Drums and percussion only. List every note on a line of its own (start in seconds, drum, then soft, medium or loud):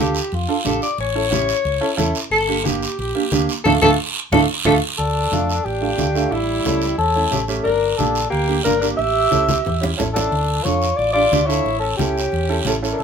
0.15 short guiro medium
0.32 high conga soft
0.32 long guiro medium
0.65 high conga medium
0.65 short guiro medium
0.82 short guiro medium
0.98 high conga soft
0.98 long guiro medium
1.32 high conga medium
1.32 short guiro medium
1.49 short guiro medium
1.65 high conga soft
1.65 long guiro medium
1.98 high conga medium
1.98 short guiro medium
2.15 short guiro medium
2.31 high conga soft
2.31 long guiro medium
2.65 high conga medium
2.65 short guiro medium
2.83 short guiro medium
2.99 high conga soft
2.99 long guiro medium
3.32 high conga medium
3.32 short guiro medium
3.49 short guiro medium
3.65 low conga medium
3.65 long guiro medium
3.82 low conga medium
3.82 long guiro medium
4.32 low conga loud
4.32 long guiro medium
4.65 low conga medium
4.65 long guiro medium
4.99 high conga soft
4.99 long guiro medium
5.33 high conga medium
5.33 short guiro medium
5.50 short guiro medium
5.66 high conga soft
5.66 long guiro medium
5.99 high conga medium
5.99 short guiro medium
6.15 short guiro medium
6.32 high conga soft
6.32 long guiro medium
6.65 high conga medium
6.65 short guiro medium
6.82 short guiro medium
6.99 high conga soft
6.99 long guiro medium
7.32 high conga medium
7.32 short guiro medium
7.48 short guiro medium
7.65 high conga soft
7.65 long guiro medium
7.99 high conga medium
7.99 short guiro medium
8.15 short guiro medium
8.32 high conga soft
8.32 long guiro medium
8.65 high conga medium
8.65 short guiro medium
8.82 short guiro medium
8.99 high conga soft
8.99 long guiro medium
9.32 high conga medium
9.32 short guiro medium
9.49 high conga medium
9.49 short guiro medium
9.65 low conga medium
9.65 long guiro medium
9.84 low conga medium
9.99 low conga medium
9.99 short guiro medium
10.16 low conga medium
10.16 short guiro medium
10.32 high conga soft
10.32 long guiro medium
10.65 high conga medium
10.65 short guiro medium
10.82 short guiro medium
10.99 high conga soft
10.99 long guiro medium
11.33 high conga medium
11.33 short guiro medium
11.50 short guiro medium
11.65 high conga soft
11.65 long guiro medium
11.99 high conga medium
11.99 short guiro medium
12.18 short guiro medium
12.32 high conga soft
12.32 long guiro medium
12.65 high conga medium
12.65 short guiro medium
12.84 short guiro medium
12.99 high conga soft
12.99 long guiro medium